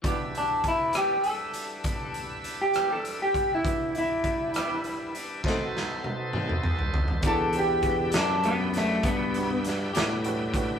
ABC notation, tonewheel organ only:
X:1
M:12/8
L:1/8
Q:3/8=67
K:Em
V:1 name="Tonewheel organ"
[G,DEB]12 | [G,B,DE]6 [B,^DAc]6 | [DEGB]12 |]